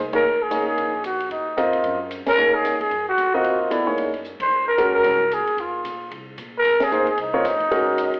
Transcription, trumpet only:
0.15 A#4
0.42 G#4
0.68 G#4
1.06 F#4
1.32 D#4
2.28 A#4
2.55 G#4
2.81 G#4
3.09 F#4
3.35 F#4
4.41 C5
4.68 A#4
4.94 A#4
5.33 G#4
5.60 F4
6.58 A#4
6.84 G#4
7.10 G#4
7.22 D#4

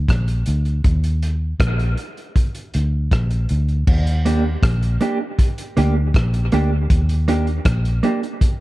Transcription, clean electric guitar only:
4.25 A#3 D4 G4
5.01 A#3 D4 G4
5.21 muted clean electric guitar stroke
5.77 A#3 D4 G4
5.96 muted clean electric guitar stroke
6.52 A#3 D4 G4
7.28 A#3 D4 G4
8.03 A#3 D4 G4
8.23 muted clean electric guitar stroke

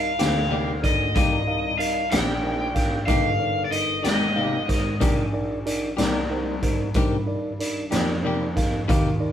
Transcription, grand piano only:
Already playing: C2
0.21 D2
1.16 C2
2.12 A#1
3.09 G1
4.05 G#1
5.02 A#1
5.98 C2
6.96 G2
7.92 F2
8.89 D#2

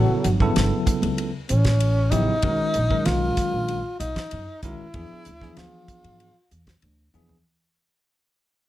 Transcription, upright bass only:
0.09 muted upright bass stroke
0.25 G1
0.56 G1
0.87 muted upright bass stroke
1.03 C#2
1.50 A1
2.43 B1
2.76 A#1
3.06 B1
3.38 muted upright bass stroke
3.53 A#1
4.00 B1
4.32 F#2
4.63 B1
4.80 muted upright bass stroke
4.94 E2
5.11 muted upright bass stroke
5.26 D2
5.57 D2
5.89 muted upright bass stroke
6.04 G#2
6.51 E2
6.83 D2
7.14 E2

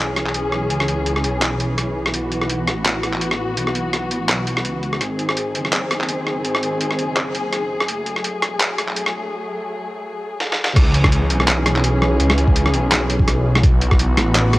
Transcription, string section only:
Already playing: E3 C#4 G#4
2.14 B3 F#4
5.01 D#3 C4 G#4
7.88 F#3 A3
10.76 E3 C#4 G#4
13.63 E3 B3 F#4

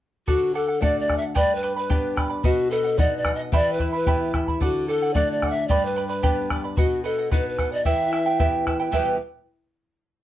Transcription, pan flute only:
0.27 F#4
0.55 A4
0.82 D5
1.00 D5
1.18 E5
1.36 D5
1.55 B4
1.79 B4
2.44 F#4
2.71 A4
2.99 D5
3.17 D5
3.35 D#5
3.55 D5
3.73 B4
3.96 B4
4.62 F#4
4.88 A4
5.14 D5
5.32 D5
5.50 E5
5.68 D5
5.86 B4
6.08 B4
6.77 F#4
7.04 A4
7.32 B4
7.49 B4
7.73 D5
7.85 E5
8.93 B4

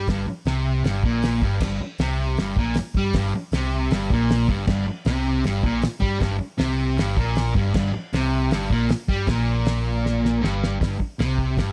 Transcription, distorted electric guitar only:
0.08 G2
0.28 muted distorted electric guitar stroke
0.46 C3
0.84 G2
1.03 A#2
1.43 G2
1.61 G2
1.81 muted distorted electric guitar stroke
2.00 C3
2.39 G2
2.57 A#2
2.78 muted distorted electric guitar stroke
2.97 G3
3.16 G2
3.35 muted distorted electric guitar stroke
3.54 C3
3.92 G2
4.12 A#2
4.49 G2
4.68 G2
4.88 muted distorted electric guitar stroke
5.06 C3
5.45 G2
5.63 A#2
5.82 muted distorted electric guitar stroke
6.00 G3
6.19 G2
6.38 muted distorted electric guitar stroke
6.58 C3
6.98 G2
7.16 A#2
7.55 G2
7.75 G2
7.94 muted distorted electric guitar stroke
8.13 C3
8.52 G2
8.71 A#2
8.90 muted distorted electric guitar stroke
9.09 G3
9.27 A#2
10.41 G2
10.80 G2
10.99 muted distorted electric guitar stroke
11.19 C3
11.57 G2

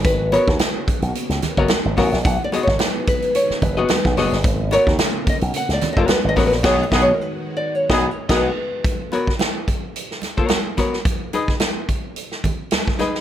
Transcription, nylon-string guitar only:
0.05 B4
0.32 C#5
2.26 F#5
2.44 D5
2.63 C#5
2.80 B4
3.08 B4
3.35 C#5
3.63 B4
4.73 C#5
5.29 D#5
5.56 F#5
5.73 D5
5.93 D#5
6.10 B4
6.29 D#5
6.47 B4
6.65 C#5
6.83 D#5
7.02 C#5
7.14 A#4
7.21 B4
7.57 D5
7.75 C#5
7.93 D5
8.11 C#5
8.31 B4

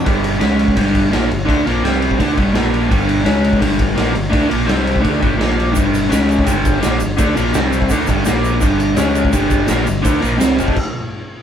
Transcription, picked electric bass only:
0.06 G1
0.41 C#2
0.78 G1
1.13 A#1
1.31 G1
1.49 D2
1.67 A#1
1.83 C2
2.20 D2
2.38 G1
2.54 A#1
2.91 G1
3.26 C#2
3.62 G1
3.97 A#1
4.16 G1
4.33 D2
4.53 A#1
4.69 C2
5.05 D2
5.23 G1
5.41 A#1
5.77 G1
6.12 C#2
6.47 G1
6.85 A#1
7.02 G1
7.19 D2
7.36 A#1
7.55 C2
7.91 D2
8.10 G1
8.27 A#1
8.63 G1
8.97 C#2
9.34 G1
9.69 A#1
9.89 G1
10.05 D2
10.23 A#1
10.41 C2
10.59 F1

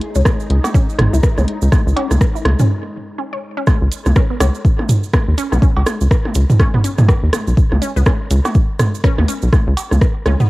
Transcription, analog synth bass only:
0.16 C#2
0.50 C#2
0.99 G#1
1.13 C#2
1.38 C#2
1.62 C#2
1.86 C#2
2.11 C#2
2.45 C#2
3.82 C#2
4.06 C#2
4.40 C#2
5.28 D#2
5.52 B1
5.77 C#2
6.01 C#2
6.35 C#2
7.23 D#2
7.48 B1
7.72 C#2
7.96 C#2
8.31 C#2
9.18 D#2
9.43 B1
9.67 C#2
9.92 C#2
10.26 C#2

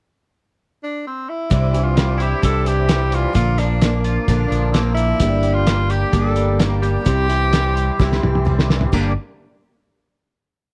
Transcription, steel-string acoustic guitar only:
1.50 C3 G3 D4 E4 G4
1.73 D4 E4 G4
1.97 G3 D4 E4 G4
2.43 C3 G3 D4 E4 G4
2.88 G3 D4 E4 G4
3.33 A#2 D3 F3 A#3 D4 A#4
3.58 F3 A#3 D4 A#4
3.82 F3 A#3 D4 A#4
4.28 A#2 D3 F3 A#3 D4 A#4
4.74 F3 A#3 D4 A#4
5.21 G2 D3 G3 A#3 D4 G4
5.66 G3 A#3 D4 G4
6.13 G2 D3 G3 A#3 D4 G4
6.59 G3 A#3 D4 G4
7.05 C3 G3 C4 E4 G4
7.28 E4 G4
7.52 G3 C4 E4 G4
7.99 C3 G3 C4 E4 G4
8.45 G3 C4 E4 G4
8.92 G2 D3 G3 A#3 D4 G4

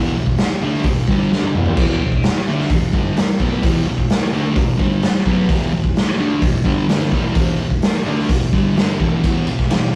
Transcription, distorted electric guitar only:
Already playing: E2 B2 E3
0.16 E2 B2
0.62 D3 A3 D4
0.86 E2 B2
1.09 G2 D3 G3
1.33 G2 D3 G3
1.56 E2 B2 E3
1.79 E2 B2 E3
2.03 E2 B2
2.47 D3 A3 D4
2.70 E2 B2
2.93 G2 D3 G3
3.18 muted distorted electric guitar stroke
3.40 B2 F#3 B3
3.62 E2 B2 E3
3.86 E2 B2
4.33 D3 A3 D4
4.56 E2 B2
4.77 G2 D3 G3
5.03 muted distorted electric guitar stroke
5.26 B2 F#3 B3
5.49 E2 B2 E3
5.73 E2 B2
6.19 D3 A3 D4
6.43 E2 B2
6.64 G2 D3 G3
6.88 G2 D3 G3
7.11 E2 B2 E3
7.35 E2 B2 E3
7.58 E2 B2
8.05 D3 A3 D4
8.31 E2 B2
8.53 G2 D3 G3
8.76 G2 D3 G3
8.99 E2 B2 E3
9.24 E2 B2 E3
9.47 E2 B2
9.71 E2 B2

